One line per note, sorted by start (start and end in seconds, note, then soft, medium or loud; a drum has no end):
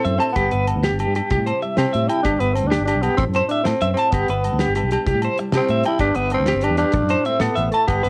0.00 0.35 A2 medium
0.00 0.35 A3 medium
0.00 0.17 C4 medium
0.00 0.36 C4 medium
0.00 0.21 E4 medium
0.05 0.18 F#2 medium
0.05 0.36 A4 medium
0.05 0.18 E5 medium
0.05 closed hi-hat soft
0.18 0.32 C4 medium
0.18 0.29 D4 medium
0.18 0.34 A5 medium
0.18 closed hi-hat soft
0.22 low agogo medium
0.29 0.93 B3 medium
0.29 0.37 E4 soft
0.36 0.49 G1 medium
0.36 1.31 G2 medium
0.36 0.67 G3 medium
0.36 0.51 B3 medium
0.36 0.82 D4 medium
0.36 0.50 G4 medium
0.36 kick medium
0.36 closed hi-hat medium
0.36 low agogo medium
0.40 0.99 B4 medium
0.51 0.72 G1 medium
0.51 1.29 B3 medium
0.51 0.66 B4 medium
0.51 closed hi-hat soft
0.67 1.29 G3 medium
0.67 closed hi-hat medium
0.67 low agogo medium
0.76 0.89 D2 medium
0.83 1.15 D4 medium
0.83 0.97 G4 medium
0.83 snare medium
0.83 closed hi-hat medium
0.92 1.04 G1 medium
0.99 1.13 G4 medium
0.99 muted nylon-string guitar stroke medium
0.99 closed hi-hat soft
0.99 low agogo medium
1.07 1.20 G2 medium
1.15 1.31 D4 soft
1.15 1.29 G4 medium
1.15 closed hi-hat soft
1.15 low agogo medium
1.30 1.37 C2 medium
1.30 2.25 C3 medium
1.30 1.62 G3 medium
1.30 1.78 E4 medium
1.30 1.45 G4 medium
1.30 1.94 G4 medium
1.30 muted nylon-string guitar stroke medium
1.30 kick medium
1.30 closed hi-hat medium
1.37 1.51 A2 medium
1.46 2.10 C4 medium
1.46 1.60 C5 medium
1.46 closed hi-hat soft
1.46 low agogo medium
1.62 2.23 G3 medium
1.62 1.76 E5 medium
1.62 closed hi-hat soft
1.77 1.84 C3 medium
1.77 2.10 C4 medium
1.77 1.91 G4 medium
1.77 snare medium
1.77 closed hi-hat medium
1.77 low agogo medium
1.93 2.07 A2 medium
1.93 4.14 G4 medium
1.93 2.07 E5 medium
1.93 closed hi-hat soft
2.09 2.23 E4 medium
2.09 2.23 G5 medium
2.09 closed hi-hat soft
2.09 low agogo medium
2.13 2.25 C4 medium
2.23 2.37 G1 medium
2.23 3.03 G2 medium
2.23 2.42 D4 medium
2.23 2.39 G4 medium
2.23 kick medium
2.23 closed hi-hat medium
2.23 low agogo medium
2.40 2.60 G1 medium
2.40 2.55 B3 medium
2.40 3.18 B3 medium
2.40 2.54 B4 medium
2.40 closed hi-hat soft
2.54 3.17 G3 medium
2.54 2.69 C4 medium
2.54 closed hi-hat soft
2.54 low agogo medium
2.64 2.77 D2 medium
2.68 2.85 D4 medium
2.68 2.85 G4 medium
2.68 snare medium
2.68 closed hi-hat medium
2.80 2.92 G1 medium
2.85 3.04 D4 medium
2.85 3.01 G4 medium
2.85 closed hi-hat soft
2.85 low agogo medium
2.96 3.08 B1 medium
3.02 3.18 G2 medium
3.02 3.17 B3 medium
3.02 3.17 G4 medium
3.02 closed hi-hat soft
3.02 low agogo medium
3.17 3.25 A1 medium
3.17 3.81 A2 medium
3.17 3.25 C4 medium
3.17 muted clean electric guitar stroke medium
3.17 kick medium
3.17 closed hi-hat medium
3.28 3.40 F#2 medium
3.33 3.48 C4 medium
3.33 4.12 C4 medium
3.33 3.49 C5 medium
3.33 closed hi-hat soft
3.33 low agogo medium
3.49 4.10 A3 medium
3.49 3.63 D4 medium
3.49 3.64 E5 medium
3.49 closed hi-hat soft
3.64 3.73 A2 medium
3.64 3.81 C3 medium
3.64 3.93 C4 medium
3.64 snare medium
3.64 closed hi-hat medium
3.64 low agogo medium
3.81 3.94 F#2 medium
3.81 3.97 B2 medium
3.81 3.95 E5 medium
3.81 closed hi-hat soft
3.93 4.13 A2 medium
3.93 4.13 C4 medium
3.93 closed hi-hat soft
3.93 low agogo medium
3.99 4.12 A5 medium
4.11 4.25 G1 medium
4.11 5.07 G2 medium
4.11 4.75 B3 medium
4.11 4.27 G4 medium
4.11 kick medium
4.11 closed hi-hat medium
4.11 low agogo medium
4.28 4.48 G1 medium
4.28 5.06 B3 medium
4.28 4.43 B4 medium
4.28 closed hi-hat soft
4.44 5.05 G3 medium
4.44 closed hi-hat medium
4.44 low agogo medium
4.53 4.65 D2 medium
4.59 4.91 D4 medium
4.59 4.73 G4 medium
4.59 snare medium
4.59 closed hi-hat medium
4.68 4.81 G1 medium
4.75 4.89 G4 medium
4.75 5.06 B4 medium
4.75 closed hi-hat soft
4.75 low agogo medium
4.83 4.96 B1 medium
4.91 5.08 D4 medium
4.91 5.05 G4 medium
4.91 closed hi-hat soft
4.91 low agogo medium
5.06 5.13 C2 medium
5.06 6.01 C3 medium
5.06 5.37 G3 medium
5.06 5.23 C4 medium
5.06 5.52 E4 medium
5.06 5.21 G4 medium
5.06 5.68 G4 medium
5.06 kick medium
5.06 closed hi-hat medium
5.15 5.27 A2 medium
5.22 5.85 C4 medium
5.22 5.37 C5 medium
5.22 closed hi-hat soft
5.22 low agogo medium
5.38 5.99 G3 medium
5.38 muted clean electric guitar stroke medium
5.38 closed hi-hat soft
5.52 5.60 C3 medium
5.52 5.61 D4 medium
5.52 5.68 G4 medium
5.52 snare medium
5.52 closed hi-hat medium
5.52 low agogo medium
5.57 5.85 C4 medium
5.57 6.00 E4 medium
5.68 5.82 A2 medium
5.68 6.01 G4 medium
5.68 5.83 E5 medium
5.68 closed hi-hat soft
5.84 6.00 C4 medium
5.84 5.99 E4 loud
5.84 5.99 G5 medium
5.84 closed hi-hat soft
5.84 low agogo medium
5.99 6.12 G1 medium
5.99 6.95 G2 medium
5.99 6.31 G3 medium
5.99 6.17 D4 medium
5.99 6.14 G4 medium
5.99 6.49 B4 medium
5.99 kick medium
5.99 closed hi-hat medium
5.99 low agogo medium
6.15 6.35 G1 medium
6.15 6.32 B3 medium
6.15 6.94 D4 medium
6.15 6.30 B4 medium
6.15 closed hi-hat soft
6.30 6.93 G3 medium
6.30 6.66 C4 loud
6.30 closed hi-hat soft
6.30 low agogo medium
6.40 6.53 D2 medium
6.46 6.61 G4 medium
6.46 6.64 B4 medium
6.46 snare medium
6.46 closed hi-hat medium
6.54 6.68 G1 medium
6.61 6.77 D4 medium
6.61 6.76 G4 medium
6.61 closed hi-hat soft
6.61 low agogo medium
6.65 6.80 B4 medium
6.70 6.83 E2 medium
6.77 7.27 D4 loud
6.77 6.92 G4 medium
6.77 6.94 B4 medium
6.77 closed hi-hat soft
6.77 low agogo medium
6.92 7.00 A1 medium
6.92 7.58 A2 medium
6.92 muted clean electric guitar stroke medium
6.92 kick medium
6.92 closed hi-hat medium
7.02 7.15 F#2 medium
7.09 7.87 E4 medium
7.09 7.24 C5 medium
7.09 closed hi-hat soft
7.09 low agogo medium
7.25 7.88 A3 medium
7.25 7.42 C4 medium
7.25 7.40 E5 medium
7.25 closed hi-hat soft
7.40 7.48 A2 medium
7.40 7.71 B3 medium
7.40 7.55 A4 medium
7.40 snare medium
7.40 closed hi-hat medium
7.40 low agogo medium
7.44 7.59 C3 medium
7.55 7.70 A1 medium
7.55 7.70 E5 medium
7.55 closed hi-hat soft
7.60 7.74 B2 medium
7.72 7.89 A2 medium
7.72 7.87 A3 medium
7.72 7.87 A5 medium
7.72 closed hi-hat soft
7.72 low agogo medium
7.87 8.01 G1 medium
7.87 8.09 G2 medium
7.87 8.09 B3 medium
7.87 8.02 G4 medium
7.87 kick medium
7.87 closed hi-hat medium
7.87 low agogo medium
8.03 8.09 G1 medium
8.03 8.09 B3 medium
8.03 8.09 B4 medium
8.03 closed hi-hat soft